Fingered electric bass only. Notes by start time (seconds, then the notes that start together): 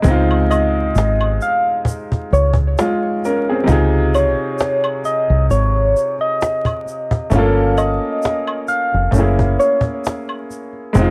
0.05 C#2
0.96 G#1
2.33 C#2
3.68 C#2
5.30 C2
5.50 G#1
7.31 G1
8.94 F1
9.12 F#1
10.95 F1